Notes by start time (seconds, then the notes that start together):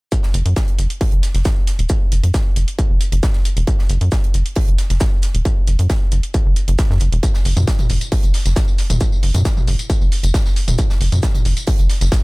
0.12 kick, closed hi-hat, shaker
0.23 snare
0.34 F#1, closed hi-hat, shaker
0.46 F#2, closed hi-hat
0.56 kick, snare, closed hi-hat, shaker
0.68 closed hi-hat
0.79 F#1, closed hi-hat, shaker
0.90 closed hi-hat
1.01 kick, closed hi-hat, open hi-hat
1.12 F#1, closed hi-hat
1.23 snare, closed hi-hat, shaker
1.35 F#1, snare, closed hi-hat
1.45 kick, snare, closed hi-hat, shaker
1.67 snare, closed hi-hat, shaker
1.79 E1, closed hi-hat
1.89 kick, closed hi-hat, shaker
2.12 F#1, closed hi-hat, shaker
2.23 F#2, closed hi-hat
2.34 kick, snare, closed hi-hat, shaker
2.56 F#1, closed hi-hat, shaker
2.68 closed hi-hat
2.79 kick, closed hi-hat, shaker
2.90 F#1
3.01 closed hi-hat, shaker
3.12 F#1, closed hi-hat
3.23 kick, snare, closed hi-hat, shaker
3.33 snare
3.45 closed hi-hat, shaker
3.57 E1, closed hi-hat
3.67 kick, closed hi-hat, shaker
3.79 snare
3.89 F#1, closed hi-hat, shaker
4.01 F#2, closed hi-hat
4.11 kick, snare, closed hi-hat, shaker
4.24 closed hi-hat
4.34 F#1, closed hi-hat, shaker
4.46 closed hi-hat
4.56 kick, closed hi-hat, open hi-hat
4.68 F#1, closed hi-hat
4.78 snare, closed hi-hat, shaker
4.90 F#1, snare, closed hi-hat
5.00 kick, snare, closed hi-hat, shaker
5.22 snare, closed hi-hat, shaker
5.35 E1, closed hi-hat
5.45 kick, closed hi-hat, shaker
5.67 F#1, closed hi-hat, shaker
5.79 F#2, closed hi-hat
5.89 kick, snare, closed hi-hat, shaker
6.12 F#1, closed hi-hat, shaker
6.23 closed hi-hat
6.34 kick, closed hi-hat, shaker
6.46 F#1
6.56 closed hi-hat, shaker
6.68 F#1, closed hi-hat
6.78 kick, snare, closed hi-hat, shaker
6.90 F#2, snare
7.00 F#1, closed hi-hat, shaker
7.12 E1, closed hi-hat
7.23 kick, closed hi-hat, tambourine, shaker
7.34 snare, tambourine
7.45 F#1, open hi-hat, shaker
7.57 F#2, closed hi-hat, mid tom, tambourine
7.67 kick, snare, closed hi-hat, tambourine, shaker
7.79 closed hi-hat, mid tom, tambourine
7.89 F#1, open hi-hat, shaker
8.01 closed hi-hat, tambourine
8.12 kick, closed hi-hat, open hi-hat, tambourine
8.23 F#1, closed hi-hat, tambourine
8.34 snare, open hi-hat, shaker
8.46 F#1, snare, closed hi-hat, tambourine
8.56 kick, snare, closed hi-hat, tambourine, shaker
8.68 tambourine
8.78 snare, open hi-hat, shaker
8.90 E1, closed hi-hat, mid tom, tambourine
9.01 kick, closed hi-hat, tambourine, shaker
9.12 tambourine
9.23 F#1, open hi-hat, shaker
9.34 F#2, closed hi-hat, mid tom, tambourine
9.45 kick, snare, closed hi-hat, tambourine, shaker
9.57 mid tom, tambourine
9.67 F#1, open hi-hat, shaker
9.79 closed hi-hat, tambourine
9.90 kick, closed hi-hat, tambourine, shaker
10.01 F#1, tambourine
10.12 open hi-hat, shaker
10.23 F#1, closed hi-hat, tambourine
10.34 kick, snare, closed hi-hat, tambourine, shaker
10.46 snare, tambourine
10.56 open hi-hat, shaker
10.68 E1, closed hi-hat, mid tom, tambourine
10.78 kick, closed hi-hat, tambourine, shaker
10.90 snare, tambourine
11.01 F#1, open hi-hat, shaker
11.12 F#2, closed hi-hat, mid tom, tambourine
11.23 kick, snare, closed hi-hat, tambourine, shaker
11.34 closed hi-hat, mid tom, tambourine
11.45 F#1, open hi-hat, shaker
11.57 closed hi-hat, tambourine
11.67 kick, closed hi-hat, open hi-hat, tambourine
11.79 F#1, closed hi-hat, tambourine
11.89 snare, open hi-hat, shaker
12.01 F#1, snare, closed hi-hat, tambourine
12.12 kick, snare, closed hi-hat, tambourine, shaker